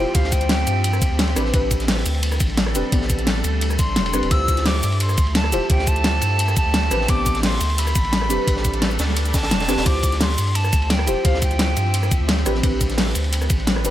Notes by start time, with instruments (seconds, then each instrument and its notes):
Already playing: ambient pad F3 C4 G4 E5, synth stab E4 F4 G4, flute G5, sub drop
0.00 synth stab C5
0.14 sub bass D2, synth stab E4 F4 G4 C5, flute F5, kick, closed hi-hat, ride
0.24 snare
0.32 flute G5, kick, closed hi-hat, ride, shaker
0.41 closed hi-hat
0.49 snare, closed hi-hat, ride
0.67 sub bass G2, closed hi-hat, ride, shaker
0.84 closed hi-hat, ride
0.93 cross-stick, shaker
1.02 kick, closed hi-hat, ride, shaker
1.11 sub bass D2
1.19 snare, closed hi-hat, ride
1.28 ride
1.36 sub bass A1, ambient pad G3 A3 D4 A4, synth stab C4 D4 G4 B4, cross-stick, closed hi-hat, ride, shaker
1.45 snare
1.52 sub bass A1, synth stab C4 D4 G4 B4, kick, closed hi-hat, ride
1.71 kick, closed hi-hat, ride, shaker
1.80 snare, closed hi-hat
1.88 snare, closed hi-hat, open hi-hat
1.97 snare
2.06 sub bass D2, closed hi-hat, ride, shaker
2.14 ride
2.23 closed hi-hat, ride
2.32 cross-stick, shaker
2.40 sub bass A1, kick, closed hi-hat, ride, shaker
2.49 ride
2.57 snare, closed hi-hat, ride
2.67 cross-stick
2.75 sub bass E1, synth stab C4 D4 G4 B4, closed hi-hat, ride, shaker
2.91 sub bass A1, synth stab B3 C4 D4 G4, kick, closed hi-hat, ride
3.02 snare
3.10 kick, closed hi-hat, ride, shaker
3.19 closed hi-hat
3.27 snare, closed hi-hat, ride
3.44 sub bass D2, closed hi-hat, ride, shaker
3.61 closed hi-hat, ride
3.70 cross-stick, shaker
3.79 flute C6, kick, closed hi-hat, ride, shaker
3.88 sub bass A1
3.96 sub bass E1, snare, closed hi-hat, ride
4.06 ride
4.13 sub bass G1, synth stab C4 D4 G4 B4, cross-stick, closed hi-hat, shaker
4.23 sub bass E1, ride
4.30 sub bass D2, ambient pad F3 G4 E5, synth stab E4 F4 G4 C5, flute E6, kick, closed hi-hat, ride
4.48 kick, closed hi-hat, ride, shaker
4.57 snare, closed hi-hat
4.66 flute D6, snare, closed hi-hat, open hi-hat
4.75 snare
4.83 sub bass G2, closed hi-hat, ride, shaker
4.92 ride
5.00 flute C6, closed hi-hat, ride
5.09 cross-stick, shaker
5.18 sub bass D2, kick, closed hi-hat, ride, shaker
5.27 ride
5.35 flute A5, snare, closed hi-hat, ride
5.44 cross-stick
5.52 sub bass D1, synth stab E4 F4 G4 C5, closed hi-hat, ride, shaker
5.69 sub bass D2, synth stab E4 F4 G4 C5, flute G5, kick, closed hi-hat, ride
5.79 snare
5.87 flute A5, kick, closed hi-hat, ride, shaker
5.96 closed hi-hat
6.04 snare, closed hi-hat, ride
6.21 sub bass G2, closed hi-hat, ride, shaker
6.39 closed hi-hat, ride
6.48 cross-stick, shaker
6.56 flute A5, kick, closed hi-hat, ride, shaker
6.66 sub bass D2
6.74 snare, closed hi-hat, ride
6.83 ride
6.91 sub bass A1, ambient pad G3 D4 A4, synth stab C4 D4 G4 B4, cross-stick, closed hi-hat, ride, shaker
7.01 snare
7.07 sub bass A1, synth stab B3 C4 D4 G4, flute D6, kick, closed hi-hat, ride
7.26 kick, closed hi-hat, ride, shaker
7.35 snare, closed hi-hat
7.43 flute C6, snare, closed hi-hat, open hi-hat
7.53 snare
7.61 sub bass D2, closed hi-hat, ride, shaker
7.70 ride
7.78 flute B5, closed hi-hat, ride
7.87 cross-stick, shaker
7.95 sub bass A1, kick, closed hi-hat, ride, shaker
8.05 ride
8.13 snare, closed hi-hat, ride
8.22 cross-stick
8.29 sub bass E1, synth stab C4 D4 G4 B4, closed hi-hat, ride, shaker
8.46 sub bass A1, synth stab C4 D4 G4 B4, kick, closed hi-hat, ride
8.57 snare
8.65 kick, closed hi-hat, ride, shaker
8.74 closed hi-hat
8.82 snare, closed hi-hat, ride
8.91 shaker
8.99 sub bass D2, snare, closed hi-hat, open hi-hat, shaker
9.08 snare
9.17 closed hi-hat, ride
9.25 flute B5, closed hi-hat, shaker
9.34 flute A5, kick, snare, closed hi-hat, open hi-hat, shaker
9.43 sub bass A1, snare, open hi-hat
9.51 sub bass E1, snare, closed hi-hat, open hi-hat
9.60 snare, closed hi-hat, open hi-hat
9.68 sub bass G1, synth stab C4 D4 G4 B4, cross-stick, snare, closed hi-hat, open hi-hat, shaker
9.78 sub bass E1, snare, open hi-hat
9.85 sub bass D2, ambient pad F3 C4 G4 E5, synth stab E4 F4 G4 C5, flute D6, kick, closed hi-hat, ride
10.03 kick, closed hi-hat, ride, shaker
10.12 snare, closed hi-hat
10.21 flute C6, snare, closed hi-hat, open hi-hat
10.29 snare
10.38 sub bass G2, closed hi-hat, ride, shaker
10.47 ride
10.55 flute A5, closed hi-hat, ride
10.64 cross-stick, shaker
10.73 sub bass D2, kick, closed hi-hat, ride, shaker
10.82 ride
10.90 flute G5, snare, closed hi-hat, ride
10.99 cross-stick
11.07 sub bass D1, synth stab E4 F4 G4 C5, closed hi-hat, ride, shaker
11.23 sub bass D2, synth stab E4 F4 G4 C5, flute F5, kick, closed hi-hat, ride
11.34 snare
11.42 flute G5, kick, closed hi-hat, ride, shaker
11.51 closed hi-hat
11.59 snare, closed hi-hat, ride
11.76 sub bass G2, closed hi-hat, ride, shaker
11.94 closed hi-hat, ride
12.03 cross-stick, shaker
12.11 kick, closed hi-hat, ride, shaker
12.20 sub bass D2
12.28 snare, closed hi-hat, ride
12.38 ride
12.45 sub bass A1, ambient pad G3 D4 B4, synth stab C4 D4 G4 B4, cross-stick, closed hi-hat, ride, shaker
12.55 snare
12.62 sub bass A1, synth stab C4 D4 G4 B4, kick, closed hi-hat, ride
12.81 kick, closed hi-hat, ride, shaker
12.90 snare, closed hi-hat
12.98 snare, closed hi-hat, open hi-hat
13.07 snare
13.15 sub bass D2, closed hi-hat, ride, shaker
13.24 ride
13.33 closed hi-hat, ride
13.42 cross-stick, shaker
13.50 sub bass A1, kick, closed hi-hat, ride, shaker
13.60 ride
13.67 snare, closed hi-hat, ride
13.76 cross-stick
13.84 sub bass E1, synth stab C4 D4 G4 B4, closed hi-hat, ride, shaker